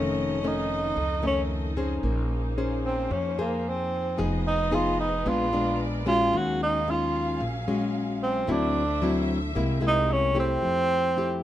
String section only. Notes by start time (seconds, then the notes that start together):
Already playing: D#4 F4 A4 D#5
2.03 A#3 G#4 C5
4.19 F4 B4 D#5
5.26 A#4 D5
6.33 F#3 C#4 F5
8.48 D4 C5 E5
9.55 C4 G#4 A#4